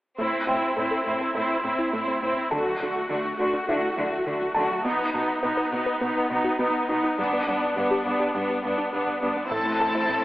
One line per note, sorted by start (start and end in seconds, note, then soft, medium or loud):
0.18 0.27 A2 soft
0.18 0.27 A3 medium
0.18 0.46 C4 soft
0.18 0.46 E4 soft
0.33 0.42 C4 soft
0.47 0.56 A2 soft
0.47 0.76 C4 soft
0.47 0.75 E4 soft
0.47 2.18 G5 soft
0.77 0.85 A2 soft
0.77 0.86 A3 medium
0.77 1.04 C4 soft
0.77 1.05 E4 soft
0.91 1.00 A4 soft
1.06 1.15 A2 soft
1.06 1.34 C4 soft
1.06 1.34 E4 soft
1.21 1.30 A4 soft
1.35 1.43 A2 soft
1.35 1.44 A3 medium
1.35 1.63 C4 soft
1.35 1.63 E4 soft
1.64 1.72 A2 soft
1.64 1.92 C4 soft
1.64 1.73 C4 soft
1.64 1.92 E4 soft
1.79 1.87 E4 soft
1.93 2.02 A2 soft
1.93 2.02 A3 medium
1.93 2.22 C4 soft
1.93 2.22 E4 soft
2.08 2.17 C4 soft
2.23 2.31 A2 soft
2.23 2.32 C4 soft
2.23 2.51 C4 soft
2.23 2.51 E4 soft
2.37 2.46 C4 soft
2.51 2.59 D3 soft
2.51 2.61 D3 medium
2.51 2.79 A3 soft
2.51 2.80 F#4 soft
2.51 4.22 A4 soft
2.51 4.22 A5 soft
2.67 2.75 F#3 soft
2.80 2.88 D3 soft
2.80 3.09 A3 soft
2.80 3.09 F#4 soft
3.09 3.17 D3 soft
3.09 3.19 D3 medium
3.09 3.38 A3 soft
3.09 3.38 F#4 soft
3.25 3.34 D4 soft
3.39 3.47 D3 soft
3.39 3.67 A3 soft
3.39 3.67 F#4 soft
3.54 3.62 D4 soft
3.68 3.77 D3 medium
3.68 3.76 D3 soft
3.68 3.96 A3 soft
3.68 5.39 E4 soft
3.68 3.96 F#4 soft
3.68 5.39 E5 soft
3.97 4.06 D3 soft
3.97 4.06 F#3 soft
3.97 4.25 A3 soft
3.97 4.25 F#4 soft
4.12 4.21 A3 soft
4.26 4.34 D3 soft
4.26 4.36 D3 medium
4.26 4.54 A3 soft
4.26 4.54 F#4 soft
4.42 4.50 F#3 soft
4.54 4.64 D3 soft
4.54 4.65 F#3 soft
4.54 4.84 A3 soft
4.54 4.84 F#4 soft
4.54 6.26 A5 soft
4.71 4.79 F#3 soft
4.85 4.93 B2 soft
4.85 5.13 B3 soft
4.85 4.94 B3 medium
4.85 5.12 D#4 soft
4.99 5.08 D#4 soft
5.13 5.22 B2 soft
5.13 5.42 B3 soft
5.13 5.42 D#4 soft
5.43 5.51 B2 soft
5.43 5.52 B3 medium
5.43 5.71 B3 soft
5.43 5.71 D#4 soft
5.57 5.66 B4 soft
5.72 5.80 B2 soft
5.72 6.01 B3 soft
5.72 6.01 D#4 soft
5.86 5.95 B4 soft
6.01 6.09 B2 soft
6.01 6.10 B3 medium
6.01 6.30 B3 soft
6.01 6.30 D#4 soft
6.30 6.38 B2 soft
6.30 6.60 B3 soft
6.30 6.39 D#4 medium
6.30 6.59 D#4 soft
6.44 6.53 F#4 soft
6.59 6.68 B2 soft
6.59 6.68 B3 medium
6.59 6.89 B3 soft
6.59 6.89 D#4 soft
6.74 6.83 D#4 soft
6.89 6.97 B2 soft
6.89 7.18 B3 soft
6.89 6.98 D#4 soft
6.89 7.18 D#4 soft
7.04 7.12 D#4 soft
7.18 7.26 G2 soft
7.18 7.27 G3 medium
7.18 7.47 B3 soft
7.18 7.47 D4 soft
7.33 7.42 B3 soft
7.48 7.56 G2 soft
7.48 7.76 B3 soft
7.48 7.76 D4 soft
7.76 7.85 G2 soft
7.76 7.85 G3 medium
7.76 8.04 B3 soft
7.76 8.04 D4 soft
7.91 8.00 G4 soft
8.05 8.14 G2 soft
8.05 8.34 B3 soft
8.05 8.34 D4 soft
8.20 8.29 G4 soft
8.34 8.43 G2 soft
8.34 8.43 G3 medium
8.34 8.63 B3 soft
8.34 8.63 D4 soft
8.64 8.72 G2 soft
8.64 8.72 B3 soft
8.64 8.93 B3 soft
8.64 8.92 D4 soft
8.78 8.87 D4 soft
8.93 9.02 G2 soft
8.93 9.01 G3 medium
8.93 9.21 B3 soft
8.93 9.21 D4 soft
9.07 9.16 B3 soft
9.22 9.31 G2 soft
9.22 9.51 B3 soft
9.22 9.31 B3 soft
9.22 9.51 D4 soft
9.37 9.45 B3 soft
9.50 10.24 A1 medium
9.50 10.24 A1 soft
9.50 9.60 A2 medium
9.50 10.24 A2 soft
9.50 9.60 A3 medium
9.50 10.24 C4 soft
9.50 10.24 E4 soft
9.50 10.24 A4 soft
9.50 10.24 A5 soft
9.66 9.74 A3 soft
9.66 9.75 E4 soft
9.80 9.89 A2 soft
9.80 9.89 A4 soft
9.80 10.24 A5 soft
9.95 10.03 A3 soft
9.95 10.04 E4 soft
10.09 10.18 A2 medium
10.09 10.18 A3 medium